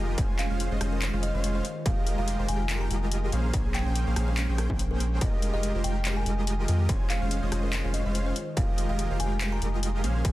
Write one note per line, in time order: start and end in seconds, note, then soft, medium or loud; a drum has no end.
0.00 0.16 F1 medium
0.00 3.28 D#3 medium
0.00 0.15 G#3 medium
0.00 0.16 G#3 medium
0.00 0.16 A#3 medium
0.00 0.15 F4 medium
0.00 0.16 G4 medium
0.00 0.15 A#4 medium
0.00 0.15 D#5 loud
0.18 0.48 F1 loud
0.18 0.47 G#3 loud
0.18 0.47 C#4 medium
0.18 0.48 F4 medium
0.18 1.63 F4 medium
0.18 0.48 C5 medium
0.18 1.63 C5 medium
0.18 0.48 G#5 loud
0.18 kick loud
0.18 closed hi-hat medium
0.39 0.55 F5 medium
0.39 clap medium
0.39 closed hi-hat medium
0.50 0.69 F1 loud
0.50 0.69 G#3 loud
0.50 0.68 C#4 medium
0.50 0.68 F4 medium
0.50 0.68 C5 medium
0.50 0.68 F5 loud
0.60 closed hi-hat medium
0.71 0.79 F1 loud
0.71 0.78 G#3 loud
0.71 0.79 C#4 medium
0.71 0.79 F4 medium
0.71 0.79 C5 medium
0.71 0.78 D#5 loud
0.81 1.11 F1 loud
0.81 1.10 G#3 medium
0.81 1.10 C#4 medium
0.81 1.10 F4 medium
0.81 1.10 C5 medium
0.81 1.10 D#5 medium
0.81 cross-stick medium
0.81 closed hi-hat medium
0.93 1.16 A#4 loud
1.02 clap loud
1.02 closed hi-hat medium
1.13 1.32 F1 loud
1.13 1.31 G#3 loud
1.13 1.31 C#4 medium
1.13 1.31 F4 medium
1.13 1.31 C5 medium
1.13 1.31 F5 loud
1.23 1.47 D#5 loud
1.23 closed hi-hat medium
1.34 1.62 F1 loud
1.34 1.63 G#3 medium
1.34 1.64 C#4 medium
1.34 1.64 F4 medium
1.34 1.64 C5 medium
1.34 1.64 F5 medium
1.44 closed hi-hat medium
1.55 1.79 C5 medium
1.64 6.85 G#3 medium
1.64 3.31 A#3 medium
1.64 3.31 G4 medium
1.64 closed hi-hat medium
1.85 2.16 F1 loud
1.85 2.15 G#3 medium
1.85 2.15 F4 medium
1.85 2.15 G4 medium
1.85 2.15 A#4 medium
1.85 2.15 D#5 loud
1.85 2.10 F5 loud
1.85 kick loud
1.85 closed hi-hat medium
2.07 closed hi-hat medium
2.18 2.37 F1 loud
2.18 2.36 G#3 medium
2.18 2.36 F4 medium
2.18 2.36 G4 medium
2.18 2.36 A#4 medium
2.18 2.36 D#5 loud
2.18 2.42 F5 loud
2.28 closed hi-hat medium
2.39 2.47 F1 loud
2.39 2.46 G#3 medium
2.39 2.46 F4 medium
2.39 2.46 G4 medium
2.39 2.46 A#4 medium
2.39 2.46 C5 loud
2.48 2.89 F1 medium
2.48 2.88 G#3 medium
2.48 2.88 F4 medium
2.48 2.88 G4 medium
2.48 2.88 A#4 medium
2.48 2.88 G5 medium
2.48 2.72 G#5 medium
2.48 closed hi-hat medium
2.70 clap loud
2.70 closed hi-hat medium
2.81 3.04 A#5 loud
2.91 3.31 F1 loud
2.91 3.30 G#3 medium
2.91 3.30 F4 medium
2.91 3.30 G4 medium
2.91 3.30 A#4 medium
2.91 3.30 D#5 loud
2.91 closed hi-hat medium
3.12 closed hi-hat medium
3.32 3.52 A#1 loud
3.32 3.51 A#3 medium
3.32 3.51 C#4 medium
3.32 5.20 C#4 medium
3.32 3.51 G#4 medium
3.32 3.51 C5 medium
3.32 3.51 F5 loud
3.32 closed hi-hat medium
3.54 3.84 A#1 loud
3.54 3.83 A#3 loud
3.54 3.83 C#4 medium
3.54 kick loud
3.54 closed hi-hat medium
3.74 3.91 G5 medium
3.74 clap medium
3.74 closed hi-hat medium
3.86 4.05 A#1 loud
3.86 4.04 A#3 medium
3.86 4.04 C#4 medium
3.86 4.04 G#4 medium
3.86 4.04 C5 medium
3.86 4.04 G5 loud
3.96 closed hi-hat medium
4.07 4.15 A#1 loud
4.07 4.14 A#3 medium
4.07 4.14 C#4 medium
4.07 4.14 G#4 medium
4.07 4.14 C5 medium
4.07 4.14 F5 loud
4.16 4.47 A#1 loud
4.16 4.46 A#3 medium
4.16 4.46 C#4 medium
4.16 4.46 G#4 medium
4.16 4.46 C5 medium
4.16 4.46 F5 medium
4.16 cross-stick medium
4.16 closed hi-hat medium
4.28 4.51 C5 loud
4.37 clap loud
4.37 closed hi-hat medium
4.49 4.68 A#1 loud
4.49 4.67 A#3 loud
4.49 4.67 C#4 medium
4.49 4.67 G#4 medium
4.49 4.67 C5 medium
4.49 4.67 G5 loud
4.58 4.82 A#4 medium
4.58 cross-stick medium
4.58 closed hi-hat medium
4.70 5.19 A#1 medium
4.70 5.19 A#3 medium
4.70 5.19 C#4 medium
4.70 5.19 G#4 medium
4.70 5.19 G5 medium
4.70 kick medium
4.79 closed hi-hat medium
4.91 5.14 A#4 medium
5.00 closed hi-hat medium
5.21 5.52 F1 loud
5.21 8.33 D#3 medium
5.21 5.51 G#3 medium
5.21 6.88 A#3 medium
5.21 5.51 F4 medium
5.21 5.51 G4 medium
5.21 6.88 G4 medium
5.21 5.51 A#4 medium
5.21 5.45 D#5 loud
5.21 5.51 D#5 loud
5.21 kick loud
5.21 closed hi-hat medium
5.42 closed hi-hat medium
5.54 5.72 F1 loud
5.54 5.72 G#3 medium
5.54 5.72 F4 medium
5.54 5.72 G4 medium
5.54 5.72 A#4 medium
5.54 5.77 D#5 loud
5.54 5.72 D#5 loud
5.63 closed hi-hat medium
5.75 5.82 F1 loud
5.75 5.82 G#3 medium
5.75 5.82 F4 medium
5.75 5.82 G4 medium
5.75 5.82 A#4 medium
5.75 5.82 C5 medium
5.84 6.24 F1 medium
5.84 6.24 G#3 medium
5.84 6.24 F4 medium
5.84 6.24 G4 medium
5.84 6.24 A#4 medium
5.84 6.08 G5 medium
5.84 6.24 G5 medium
5.84 closed hi-hat medium
6.05 clap loud
6.05 closed hi-hat medium
6.17 6.40 G#5 medium
6.26 6.66 F1 loud
6.26 6.66 G#3 loud
6.26 6.66 F4 medium
6.26 6.66 G4 medium
6.26 6.66 A#4 medium
6.26 6.66 D#5 loud
6.26 closed hi-hat medium
6.47 closed hi-hat medium
6.68 6.87 F2 medium
6.68 6.87 G#3 medium
6.68 6.87 F4 medium
6.68 6.87 G4 medium
6.68 6.87 A#4 medium
6.68 6.87 D#5 loud
6.68 closed hi-hat medium
6.89 7.19 F1 loud
6.89 7.19 G#3 loud
6.89 7.19 C#4 medium
6.89 7.19 F4 medium
6.89 8.35 F4 medium
6.89 7.19 C5 medium
6.89 8.35 C5 medium
6.89 7.19 G#5 loud
6.89 kick loud
6.89 closed hi-hat medium
7.10 7.26 F5 medium
7.10 clap medium
7.10 closed hi-hat medium
7.21 7.40 F1 loud
7.21 7.40 G#3 loud
7.21 7.40 C#4 medium
7.21 7.40 F4 medium
7.21 7.40 C5 medium
7.21 7.40 F5 loud
7.31 closed hi-hat medium
7.42 7.50 F1 loud
7.42 7.50 G#3 loud
7.42 7.50 C#4 medium
7.42 7.50 F4 medium
7.42 7.50 C5 medium
7.42 7.50 D#5 loud
7.52 7.82 F1 loud
7.52 7.82 G#3 medium
7.52 7.82 C#4 medium
7.52 7.82 F4 medium
7.52 7.82 C5 medium
7.52 7.82 D#5 medium
7.52 cross-stick medium
7.52 closed hi-hat medium
7.63 7.87 A#4 loud
7.73 clap loud
7.73 closed hi-hat medium
7.84 8.03 F1 loud
7.84 8.03 G#3 medium
7.84 8.03 C#4 medium
7.84 8.03 F4 medium
7.84 8.03 C5 medium
7.84 8.03 F5 loud
7.94 8.18 D#5 medium
7.94 closed hi-hat medium
8.05 8.33 F1 loud
8.05 8.35 G#3 medium
8.05 8.35 C#4 medium
8.05 8.35 F4 medium
8.05 8.35 C5 medium
8.05 8.35 F5 medium
8.15 closed hi-hat medium
8.26 8.50 C5 medium
8.36 10.02 D#3 medium
8.36 10.32 G#3 medium
8.36 10.02 A#3 medium
8.36 10.02 G4 medium
8.36 closed hi-hat medium
8.57 8.87 F1 loud
8.57 8.87 G#3 medium
8.57 8.87 F4 medium
8.57 8.87 G4 medium
8.57 8.87 A#4 medium
8.57 8.87 D#5 loud
8.57 8.81 F5 loud
8.57 kick loud
8.57 closed hi-hat medium
8.78 closed hi-hat medium
8.89 9.08 F1 loud
8.89 9.08 G#3 medium
8.89 9.08 F4 medium
8.89 9.08 G4 medium
8.89 9.08 A#4 medium
8.89 9.08 D#5 loud
8.89 9.13 F5 loud
8.99 closed hi-hat medium
9.10 9.18 F1 loud
9.10 9.18 G#3 medium
9.10 9.18 F4 medium
9.10 9.18 G4 medium
9.10 9.18 A#4 medium
9.10 9.18 C5 medium
9.20 9.60 F1 loud
9.20 9.60 G#3 medium
9.20 9.60 F4 medium
9.20 9.60 G4 medium
9.20 9.60 A#4 medium
9.20 9.60 G5 medium
9.20 9.44 G#5 medium
9.20 closed hi-hat medium
9.41 clap loud
9.41 closed hi-hat medium
9.52 9.76 A#5 medium
9.62 10.05 F1 loud
9.62 10.02 G#3 medium
9.62 10.02 F4 medium
9.62 10.02 G4 medium
9.62 10.02 A#4 medium
9.62 10.02 D#5 loud
9.62 closed hi-hat medium
9.83 closed hi-hat medium
10.04 10.23 A#1 loud
10.04 10.23 A#3 medium
10.04 10.23 C#4 medium
10.04 10.23 G#4 medium
10.04 10.23 C5 medium
10.04 10.23 F5 loud
10.04 closed hi-hat medium
10.25 10.32 A#1 medium
10.25 10.32 A#3 loud
10.25 10.32 C#4 medium
10.25 10.32 G#4 medium
10.25 10.32 C5 medium
10.25 kick loud
10.25 closed hi-hat medium